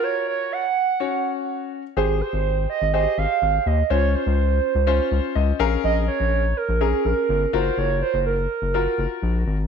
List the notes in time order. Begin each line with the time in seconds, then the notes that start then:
Already playing: F4 F#4 A#4
0.03 C#5
0.28 C#5
0.52 F#5
1.00 C#4 F#4 C#5
1.97 G#1 G4 G#4 C5
2.21 C5
2.33 G#1
2.70 D#5
2.82 G#1
2.94 G4 G#4 C5 D#5
3.18 G#1 F5
3.42 G#1
3.66 D#2 D#5
3.90 C#2 C#4 F4 C5 C#5
4.15 C5
4.27 C#2
4.75 C#2
4.87 C#4 F4 C5
5.12 C#2
5.35 C#2 D#5
5.59 A#1 C#4 G#4 A#4 F5
5.84 A#1 D#5
6.08 C#5
6.20 A#1
6.57 A#4
6.69 A#1
6.81 C#4 G#4 A#4
7.05 A#1 A#4
7.29 G1
7.53 F#1 F4 F#4 A#4 C5
7.78 F#1 C#5
8.02 C5
8.14 F#1
8.26 A#4
8.62 F#1
8.74 F4 F#4 A#4
8.98 F#1
9.23 A#1
9.47 G#1